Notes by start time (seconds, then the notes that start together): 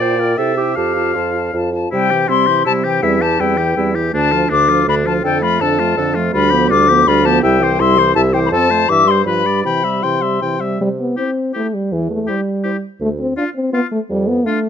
Already playing: D5
0.00 A#2 F4 C5 G5
0.19 F4 A#4 G5
0.37 C3 E4 A4 E5 G5
0.56 E4 G4 G5
0.76 F2 F4 G4 F5 A5
0.96 F4 A5
1.15 F2 F4 A5
1.35 F4 A5
1.53 F2 F4 A5
1.73 F4 A5
1.91 C3 G3 C4 E4 G5
2.11 E3 E4 G4
2.29 C3 G3 C4 E4 C6
2.47 E3 E4 G4
2.65 C3 G3 C4 E4 A5
2.84 E3 E4 G4 G5
3.03 E2 G3 C4 E4 E5
3.21 E3 E4 G4 A5
3.39 E2 G3 C4 E4 G5
3.58 E3 E4 G4
3.76 E2 G3 C4 E4
3.94 E3 E4 G4
4.13 D2 D3 A3 D4 A5
4.31 F3 D4 F4
4.50 D2 D3 A3 D4 D6
4.68 F3 D4 F4
4.86 D2 D3 A3 D4 B5
5.04 F3 D4 F4 A5
5.23 F2 D3 D4 A4 G5
5.42 F3 A3 F4 B5
5.61 F2 D3 D4 A4 A5
5.79 F3 A3 F4
5.96 F2 D3 D4 A4
6.15 F3 A3 F4
6.32 D2 G3 D4 F4 B5
6.50 F3 B3 G4
6.69 D2 G3 D4 F4 D6
6.87 F3 B3 G4
7.06 D2 G3 D4 F4 B5
7.24 F3 B3 G4 A5
7.43 C2 G3 E4 E5 G5
7.61 E3 G4 C5
7.79 C2 G3 E4 E5 C6
7.97 E3 G4 C5
8.15 C2 G3 E4 E5 A5
8.33 E3 G4 C5 G5
8.46 B5
8.51 F2 C4 F4 A4 A5
8.69 A3 A4 C5
8.89 G2 E3 E4 E5 D6
9.07 G3 G4 C5 C6
9.26 G2 F3 F4 B4 B5
9.45 G3 G4 D5
9.64 C3 E3 E4 G5 B5
9.83 G3 G4 E5
10.02 C3 E3 E4 G5 C6
10.22 G3 G4 E5
10.42 C3 E3 E4 G5
10.60 G3 G4 E5
10.81 C3 G3
10.99 B3
11.17 C4 E4 G4 C5
11.54 A3 E4 G4 C5
11.74 G3
11.92 E2 E3
12.11 A3
12.27 G3 E4 G4 C5
12.64 E4 G4 C5
13.00 D2 A3
13.19 C4
13.37 D4 F4 F5
13.55 C4
13.72 B3 F4 F5
13.91 A3
14.10 F2 G3
14.28 B3
14.45 A3 D4 F4 F5